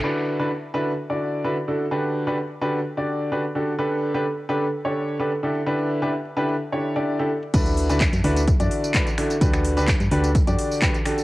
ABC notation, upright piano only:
X:1
M:4/4
L:1/16
Q:1/4=128
K:D
V:1 name="Upright piano"
[D,DEFB]3 [D,DEFB] z2 [D,DEFB] z2 [D,DEFd]3 [D,DEFB] z [D,DEFA] z | [D,DFGB]3 [D,DFGB] z2 [D,DFGB] z2 [D,DFGd]3 [D,DFGB] z [D,DFGA] z | [D,DGAB]3 [D,DGAB] z2 [D,DGAB] z2 [D,DGAc]3 [D,DGAB] z [D,DEGA] z | [D,DEGB]3 [D,DEGB] z2 [D,DEGB] z2 [D,DEGc]2 [D,DEGd]2 [D,DEGA] z2 |
[D,DEFB]3 [D,DEFB] z2 [D,DEFB] z2 [D,DEFd]3 [D,DEFB] z [D,DEFA] z | [D,DFGB]3 [D,DFGB] z2 [D,DFGB] z2 [D,DFGd]3 [D,DFGB] z [D,DFGA] z |]